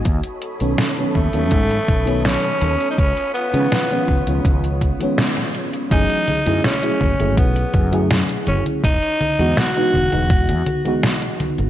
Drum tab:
HH |xxxxxx-xxxxxxxxx|xxxxxx-xxxxxxxxx|xxxxxx-xxxxxxxxx|xxxxxx-xxxxxxxxx|
SD |----o-------o---|----o-------oo--|----o-------o---|----o-------o---|
CG |----------------|----------------|o-ooo-ooo-ooo-oo|o-ooo-ooo-oo--oo|
BD |o-----o-o-o-----|o-----o-o-o-----|o-----o-o-o-----|o-------o-------|